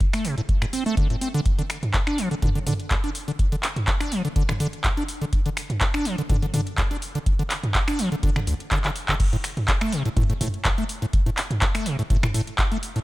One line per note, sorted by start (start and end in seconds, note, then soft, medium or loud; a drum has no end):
0.00 kick loud
0.00 closed hi-hat medium
0.13 0.26 A3 medium
0.13 finger snap medium
0.13 open hi-hat medium
0.25 0.35 C3 medium
0.25 open hi-hat loud
0.38 0.41 A2 medium
0.38 closed hi-hat soft
0.49 kick loud
0.49 closed hi-hat medium
0.62 0.66 A2 loud
0.62 finger snap medium
0.62 closed hi-hat soft
0.73 0.84 C4 medium
0.73 open hi-hat loud
0.86 0.95 A3 loud
0.86 closed hi-hat soft
0.97 1.08 D3 medium
0.97 kick loud
0.97 closed hi-hat medium
1.10 1.16 A2 medium
1.10 closed hi-hat soft
1.21 1.29 C4 medium
1.21 open hi-hat loud
1.34 1.41 D3 loud
1.34 closed hi-hat soft
1.46 kick loud
1.46 closed hi-hat medium
1.59 1.62 D3 loud
1.59 closed hi-hat soft
1.70 finger snap medium
1.70 open hi-hat loud
1.83 closed hi-hat soft
1.83 mid tom medium
1.94 kick loud
1.94 clap loud
1.94 closed hi-hat medium
2.07 2.20 D4 medium
2.07 finger snap medium
2.07 closed hi-hat soft
2.18 2.29 F3 medium
2.18 open hi-hat loud
2.31 2.35 D3 medium
2.31 closed hi-hat soft
2.42 2.50 D3 loud
2.42 kick loud
2.42 closed hi-hat medium
2.42 mid tom loud
2.55 2.59 D3 loud
2.55 closed hi-hat soft
2.67 2.74 D3 loud
2.67 mid tom medium
2.67 open hi-hat loud
2.80 closed hi-hat soft
2.91 2.95 D2 medium
2.91 kick loud
2.91 clap loud
2.91 closed hi-hat medium
3.04 3.10 D4 medium
3.04 closed hi-hat soft
3.15 open hi-hat loud
3.28 3.32 D3 medium
3.28 closed hi-hat soft
3.39 kick loud
3.39 closed hi-hat medium
3.52 3.56 D3 loud
3.52 closed hi-hat soft
3.63 finger snap medium
3.63 clap medium
3.63 open hi-hat loud
3.76 closed hi-hat soft
3.76 mid tom medium
3.87 kick loud
3.87 clap loud
3.87 closed hi-hat medium
4.00 4.13 D4 medium
4.00 finger snap medium
4.00 open hi-hat medium
4.12 4.22 F3 medium
4.12 open hi-hat loud
4.25 4.28 D3 medium
4.25 closed hi-hat soft
4.36 4.43 D3 loud
4.36 kick loud
4.36 closed hi-hat medium
4.49 4.53 D3 loud
4.49 finger snap medium
4.49 closed hi-hat soft
4.49 mid tom medium
4.60 4.67 D3 loud
4.60 open hi-hat loud
4.73 closed hi-hat soft
4.84 4.89 D2 medium
4.84 kick loud
4.84 clap loud
4.84 closed hi-hat medium
4.97 5.03 D4 medium
4.97 closed hi-hat soft
5.08 open hi-hat loud
5.21 5.25 D3 medium
5.21 closed hi-hat soft
5.33 kick loud
5.33 closed hi-hat medium
5.46 5.49 D3 loud
5.46 closed hi-hat soft
5.57 finger snap medium
5.57 open hi-hat loud
5.70 closed hi-hat soft
5.70 mid tom medium
5.81 kick loud
5.81 clap loud
5.81 closed hi-hat medium
5.94 6.07 D4 medium
5.94 finger snap medium
5.94 closed hi-hat soft
6.05 6.16 F3 medium
6.05 open hi-hat loud
6.18 6.22 D3 medium
6.18 closed hi-hat soft
6.29 6.37 D3 loud
6.29 kick loud
6.29 closed hi-hat medium
6.29 mid tom medium
6.42 6.46 D3 loud
6.42 closed hi-hat soft
6.54 6.61 D3 loud
6.54 mid tom medium
6.54 open hi-hat loud
6.67 closed hi-hat soft
6.78 6.82 D2 medium
6.78 kick loud
6.78 clap loud
6.78 closed hi-hat medium
6.91 6.97 D4 medium
6.91 closed hi-hat soft
7.02 open hi-hat loud
7.15 7.19 D3 medium
7.15 closed hi-hat soft
7.26 kick loud
7.26 closed hi-hat medium
7.39 7.43 D3 loud
7.39 closed hi-hat soft
7.50 finger snap medium
7.50 clap medium
7.50 open hi-hat loud
7.63 closed hi-hat soft
7.63 mid tom medium
7.75 kick loud
7.75 clap loud
7.75 closed hi-hat medium
7.88 8.00 D4 medium
7.88 finger snap medium
7.88 open hi-hat medium
7.99 8.10 F3 medium
7.99 open hi-hat loud
8.12 8.16 D3 medium
8.12 closed hi-hat soft
8.23 8.30 D3 loud
8.23 kick loud
8.23 closed hi-hat medium
8.36 8.40 D3 loud
8.36 finger snap medium
8.36 closed hi-hat soft
8.36 mid tom medium
8.47 8.54 D2 medium
8.47 open hi-hat loud
8.60 closed hi-hat soft
8.71 8.79 D3 loud
8.71 kick loud
8.71 clap loud
8.71 closed hi-hat medium
8.84 8.91 D3 medium
8.84 clap medium
8.84 closed hi-hat soft
8.96 open hi-hat loud
9.09 9.15 D3 medium
9.09 kick medium
9.09 clap medium
9.09 closed hi-hat soft
9.20 kick loud
9.20 closed hi-hat medium
9.20 crash loud
9.33 9.37 A2 loud
9.33 closed hi-hat soft
9.44 finger snap medium
9.44 open hi-hat loud
9.57 closed hi-hat soft
9.57 mid tom medium
9.68 kick loud
9.68 clap loud
9.68 closed hi-hat medium
9.81 9.94 A3 medium
9.81 finger snap medium
9.81 closed hi-hat soft
9.92 10.03 C3 medium
9.92 open hi-hat loud
10.05 10.09 A2 medium
10.05 closed hi-hat soft
10.17 10.24 A2 loud
10.17 kick loud
10.17 closed hi-hat medium
10.17 mid tom medium
10.30 10.33 A2 loud
10.30 closed hi-hat soft
10.41 10.48 A2 loud
10.41 mid tom medium
10.41 open hi-hat loud
10.54 closed hi-hat soft
10.65 10.69 A1 medium
10.65 kick loud
10.65 clap loud
10.65 closed hi-hat medium
10.78 10.84 A3 medium
10.78 closed hi-hat soft
10.89 open hi-hat loud
11.02 11.06 A2 medium
11.02 closed hi-hat soft
11.13 kick loud
11.13 closed hi-hat medium
11.26 11.30 A2 loud
11.26 closed hi-hat soft
11.37 finger snap medium
11.37 clap medium
11.37 open hi-hat loud
11.51 closed hi-hat soft
11.51 mid tom loud
11.62 kick loud
11.62 clap loud
11.62 closed hi-hat medium
11.75 11.87 A3 medium
11.75 finger snap medium
11.75 open hi-hat medium
11.86 11.97 C3 medium
11.86 open hi-hat loud
11.99 12.03 A2 medium
11.99 closed hi-hat soft
12.10 12.17 A2 loud
12.10 kick loud
12.10 closed hi-hat medium
12.23 12.27 A2 loud
12.23 finger snap medium
12.23 closed hi-hat soft
12.23 mid tom medium
12.34 12.41 A2 loud
12.34 open hi-hat loud
12.47 closed hi-hat soft
12.59 12.63 A1 medium
12.59 kick loud
12.59 clap loud
12.59 closed hi-hat medium
12.72 12.78 A3 medium
12.72 closed hi-hat soft
12.83 open hi-hat loud
12.96 12.99 A2 medium
12.96 closed hi-hat soft